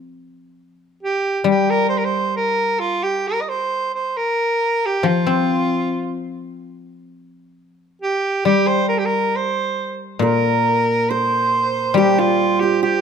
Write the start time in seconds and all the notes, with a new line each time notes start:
Already playing: F3
1.03 G4
1.44 G3
1.50 G4
1.70 A#4
1.89 C5
1.98 A#4
2.05 C5
2.36 A#4
2.79 F4
3.03 G4
3.27 A#4
3.41 D#5
3.48 C5
3.94 C5
4.17 A#4
4.85 G4
5.03 F3 F4
5.26 C4
8.02 G4
8.45 G3 G4
8.67 C5
8.88 A#4
8.98 G4
9.05 A#4
9.36 C5
10.19 A#2 A#4
10.24 A#4
11.10 C5
11.94 G3 G4
12.19 F4
12.60 G4
12.83 G4